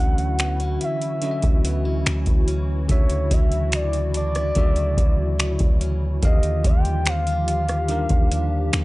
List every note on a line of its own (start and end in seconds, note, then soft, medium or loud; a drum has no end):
0.00 0.78 D2 loud
0.00 0.99 D3 medium
0.00 2.89 D3 medium
0.00 6.19 E3 medium
0.00 1.21 F#3 medium
0.00 0.39 C#4 medium
0.00 0.99 C#4 medium
0.00 6.19 E4 medium
0.00 1.00 F#4 medium
0.00 6.19 F#4 medium
0.00 1.03 E5 medium
0.00 0.78 F#5 loud
0.18 closed hi-hat soft
0.39 0.60 B3 medium
0.39 finger snap loud
0.39 closed hi-hat medium
0.60 1.64 C#4 medium
0.60 closed hi-hat soft
0.81 4.14 E4 medium
0.81 2.03 E5 medium
0.81 closed hi-hat medium
1.02 closed hi-hat soft
1.22 2.65 D3 medium
1.22 2.05 F#3 medium
1.22 2.66 C#4 medium
1.22 2.66 F#4 medium
1.22 1.30 D#5 medium
1.22 closed hi-hat medium
1.31 2.70 E5 medium
1.42 2.04 D2 loud
1.42 kick medium
1.42 closed hi-hat soft
1.64 1.85 B3 medium
1.64 closed hi-hat medium
1.85 2.46 C#4 soft
2.06 2.26 D2 loud
2.06 3.30 F#3 medium
2.06 finger snap loud
2.06 closed hi-hat medium
2.26 2.87 D2 medium
2.26 kick loud
2.26 closed hi-hat soft
2.48 3.73 C#4 medium
2.48 closed hi-hat medium
2.88 3.29 D2 loud
2.88 4.32 C#3 medium
2.88 4.32 D3 medium
2.88 6.22 D3 medium
2.88 4.33 F#4 medium
2.88 3.34 C#5 loud
2.88 4.33 E5 medium
2.88 kick loud
2.88 closed hi-hat medium
3.10 closed hi-hat soft
3.31 4.52 D2 loud
3.31 4.55 F#3 medium
3.31 3.74 E5 loud
3.31 kick medium
3.31 closed hi-hat medium
3.52 closed hi-hat soft
3.72 4.13 D5 loud
3.72 finger snap loud
3.72 closed hi-hat medium
3.93 closed hi-hat soft
4.14 4.35 D4 medium
4.14 5.78 D5 loud
4.14 closed hi-hat medium
4.35 6.31 E4 medium
4.35 cross-stick medium
4.35 closed hi-hat soft
4.55 4.96 D2 loud
4.55 5.99 C#3 medium
4.55 5.99 D3 medium
4.55 5.38 F#3 medium
4.55 6.00 F#4 medium
4.55 6.00 E5 medium
4.55 kick medium
4.55 closed hi-hat medium
4.76 closed hi-hat soft
4.97 5.58 D2 loud
4.97 kick medium
4.97 closed hi-hat medium
5.39 6.31 F#3 medium
5.39 finger snap loud
5.39 closed hi-hat medium
5.59 6.20 D2 loud
5.59 kick medium
5.59 closed hi-hat soft
5.81 6.31 C#4 medium
5.81 closed hi-hat medium
6.22 6.63 D#2 loud
6.22 7.66 D3 medium
6.22 7.65 D#3 medium
6.22 8.84 D#3 medium
6.22 8.84 F3 medium
6.22 8.84 F4 medium
6.22 8.84 G4 loud
6.22 7.66 G4 medium
6.22 6.68 D#5 medium
6.22 7.67 F5 medium
6.22 kick loud
6.22 closed hi-hat medium
6.43 closed hi-hat medium
6.64 8.06 D#2 loud
6.64 7.89 G3 medium
6.64 7.10 G5 loud
6.64 kick medium
6.64 closed hi-hat medium
6.85 closed hi-hat soft
7.06 7.27 C4 medium
7.06 7.49 F5 loud
7.06 finger snap loud
7.06 closed hi-hat medium
7.27 8.30 D4 medium
7.27 closed hi-hat soft
7.48 8.84 F4 medium
7.48 8.84 F5 loud
7.48 closed hi-hat medium
7.68 cross-stick medium
7.68 closed hi-hat soft
7.88 8.84 D#3 medium
7.88 8.72 G3 medium
7.88 8.84 D4 medium
7.88 8.84 G4 medium
7.88 8.84 A#4 medium
7.88 closed hi-hat medium
8.09 8.70 D#2 loud
8.09 kick medium
8.09 closed hi-hat soft
8.31 8.84 D4 medium
8.31 closed hi-hat medium
8.73 8.84 D#2 loud
8.73 8.84 G3 medium
8.73 finger snap loud
8.73 closed hi-hat medium